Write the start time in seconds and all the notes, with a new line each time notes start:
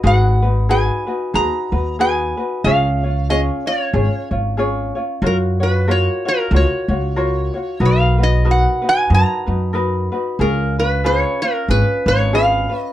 0.03 G#1 D#4 F#4 G#4 B4 F#5
0.42 D#4 F#4 B4
0.69 D#4 F#4 G#4 B4 G#5
1.07 D#4 F#4 B4
1.34 D#2 D#4 F#4 G#4 B4 A#5
1.72 D#2 D#4 F#4 B4
1.99 D#4 F#4 G#4 B4 G#5
2.37 D#4 F#4 B4
2.64 C#2 C#4 F4 G#4 C#5 F5
3.03 C#4 F4 C#5
3.30 C#4 F4 G#4 C#5 D#5
3.66 C#4 F4 C#5
3.93 G#1 C#4 F4 G#4 C#5
4.31 G#1 C#4 F4 C#5
4.57 C#4 F4 G#4 C#5
4.95 C#4 F4 C#5
5.22 F#2 F4 F#4 A#4 C#5
5.26 A#4
5.60 F4 F#4 B4 C#5
5.88 F4 F#4 A#4 C#5
6.25 F4 F#4 A#4 C#5
6.51 C#2 F4 F#4 A#4 C#5
6.56 C#5
6.88 C#2 F4 F#4 C#5
7.16 F4 F#4 A#4 C#5
7.54 F4 F#4 C#5
7.80 B1 D#4 F#4 A#4 B4
7.86 F5
8.18 D#4 F#4 B4
8.24 D#5
8.45 D#4 F#4 A#4 B4
8.51 F#5
8.82 D#4 F#4 B4
8.89 G#5
9.10 F#2 D#4 F#4 A#4 B4
9.15 A#5
9.46 F#2 D#4 F#4 B4
9.73 D#4 F#4 A#4 B4
10.12 D#4 F#4 B4
10.39 C#2 C#4 F4 G#4 A#4
10.78 C#4 F4 B4
11.04 C#4 F4 G#4 B4 C#5
11.42 C#4 F4 A#4
11.68 G#1 C#4 F4 G#4 B4
12.06 G#1 C#4 F4 B4 C#5
12.33 C#4 F4 G#4 B4 F5
12.69 C#4 F4 B4
12.80 D#5